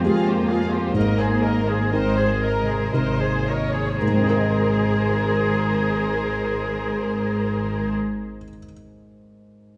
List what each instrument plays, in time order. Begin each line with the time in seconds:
Already playing: felt piano F2 G#3 F4 G4, harp F3 F4 G#4
0.04 double bass section F2, felt piano G#3 F4 G4, cello section A#3, viola section F4, harp G4, violin section G#4
0.08 violin section F5
0.27 violin section F4 C5, viola section G4
0.35 harp F4
0.47 viola section F4, violin section G#4 F5
0.65 harp G#4
0.73 violin section F4 C5, viola section G4
0.94 double bass section G#1, felt piano G#2, harp G#2, cello section A#3, viola section A#4, violin section A#4 D#5
1.19 viola section G#4, violin section G#4 C5
1.28 harp D#4
1.43 viola section A#4, violin section A#4 D#5
1.61 harp A#4
1.67 viola section G#4, violin section G#4 C5
1.92 double bass section G#1, cello section G#3, felt piano C4 D#4 A#4, viola section A#4, violin section C5 D#5, harp C5
2.17 viola section G#4, violin section C5
2.27 harp A#4
2.42 viola section A#4, violin section A#4 D#5
2.61 harp C3
2.68 viola section G#4, violin section C5
2.93 double bass section G#1, felt piano C3 D#4 A#4, harp D#4, viola section A#4, violin section C5 D#5
3.19 viola section G#4, violin section C5
3.31 harp A#3
3.47 viola section A#4, violin section C#5 D#5
3.67 harp A#4
3.73 viola section G#4, violin section C5
4.00 double bass section G#1, felt piano G#2, harp G#2, cello section G#3, viola section G#4, violin section A#4 C5
4.08 felt piano G#3, harp G#3
4.15 felt piano C4, harp C4
4.22 felt piano D#4, harp D#4
4.29 felt piano A#4, harp A#4
4.36 felt piano D#5, harp D#5